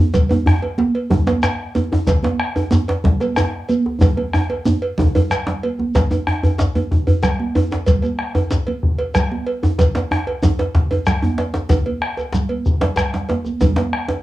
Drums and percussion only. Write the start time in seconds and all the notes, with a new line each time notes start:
0.14 bombo rim, bombo low, cowbell, djembe slap, high conga, djembe bass, low conga, shekere
0.29 cowbell, high conga, djembe tone
0.46 bombo rim, high conga, djembe bass
0.62 cowbell, djembe slap, djembe tone, high conga
0.78 djembe slap, high conga
0.95 cowbell
1.10 bombo low, djembe tone, djembe bass, low conga
1.27 bombo rim, cowbell, djembe slap, high conga, djembe tone, shekere
1.43 bombo rim, cowbell, djembe slap, shekere
1.75 cowbell, high conga, djembe tone, shekere
1.92 djembe slap, djembe tone
2.07 bombo rim, bombo low, cowbell, djembe slap, high conga, low conga, djembe bass, shekere
2.23 cowbell, djembe slap, high conga
2.39 bombo rim, high conga
2.55 cowbell, djembe slap, high conga, djembe tone
2.71 djembe slap, high conga, djembe tone, shekere
2.88 cowbell, djembe slap
3.04 bombo low, djembe slap, djembe bass, low conga
3.20 bombo rim, cowbell, djembe tone, high conga, shekere
3.36 bombo rim, cowbell, djembe slap, djembe tone, shekere
3.69 cowbell, high conga, shekere
3.86 djembe slap, djembe tone
4.01 bombo rim, bombo low, cowbell, djembe slap, djembe tone, low conga, djembe bass, shekere
4.17 bombo rim, cowbell, high conga
4.33 bombo rim, high conga, djembe tone, shekere
4.49 cowbell, high conga, djembe tone
4.66 high conga, djembe tone, shekere
4.82 cowbell, djembe slap
4.98 bombo rim, bombo low, djembe tone, low conga, djembe bass, shekere
5.15 cowbell, djembe tone, low conga
5.30 bombo rim, cowbell, djembe slap, low conga, shekere
5.47 bombo rim, djembe slap, low conga
5.63 cowbell, djembe slap, high conga
5.79 djembe tone, high conga
5.95 bombo low, cowbell, djembe slap, djembe bass, low conga, shekere
6.11 bombo rim, cowbell, djembe tone, high conga, shekere
6.27 bombo rim, djembe tone
6.43 cowbell, djembe tone, djembe bass
6.58 djembe slap, djembe bass, shekere
6.75 cowbell, djembe slap, djembe tone, high conga
6.91 bombo low, djembe tone
7.07 cowbell, djembe bass
7.23 bombo rim, cowbell, djembe slap, djembe bass, low conga, shekere
7.40 djembe slap, high conga
7.55 cowbell, djembe tone
7.71 djembe slap, djembe tone, shekere
7.86 bombo low, cowbell, djembe slap, low conga, djembe bass, shekere
8.02 bombo rim, cowbell, high conga, shekere
8.19 bombo rim
8.35 cowbell, djembe tone
8.51 djembe slap, djembe bass, shekere
8.67 cowbell, high conga
8.83 bombo low
8.98 cowbell, djembe tone
9.14 bombo rim, cowbell, djembe slap, djembe bass, low conga, shekere
9.31 djembe slap, high conga
9.47 cowbell
9.63 djembe slap, djembe tone, shekere
9.78 bombo low, cowbell, djembe slap, djembe bass, low conga, shekere
9.95 bombo rim, cowbell, djembe slap, high conga, shekere
10.11 bombo rim, djembe tone
10.27 cowbell, djembe tone
10.43 djembe slap, djembe tone, djembe bass, low conga, shekere
10.59 cowbell, djembe slap
10.75 bombo low, djembe slap
10.91 cowbell, djembe tone
11.06 bombo rim, djembe slap, low conga, djembe bass, shekere
11.23 djembe slap, djembe tone, high conga
11.38 cowbell, djembe slap
11.54 djembe slap, djembe tone, shekere
11.69 bombo low, cowbell, djembe slap, djembe tone, high conga, djembe bass, low conga, shekere
11.86 cowbell, djembe slap, high conga
12.01 bombo rim, djembe slap, high conga
12.17 cowbell, djembe tone, high conga, shekere
12.32 bombo rim, djembe slap, djembe bass, low conga, shekere
12.49 cowbell, high conga
12.66 bombo low, shekere
12.81 cowbell, djembe slap, djembe tone, low conga
12.96 bombo rim, cowbell, djembe slap, djembe bass, low conga, shekere
13.14 djembe slap, low conga, shekere
13.29 cowbell, djembe slap, high conga
13.44 djembe slap, djembe tone, high conga, shekere
13.61 bombo low, cowbell, djembe slap, djembe tone, djembe bass, low conga, shekere
13.76 bombo rim, cowbell, djembe slap, high conga, shekere
13.93 bombo rim
14.08 cowbell, djembe slap, djembe tone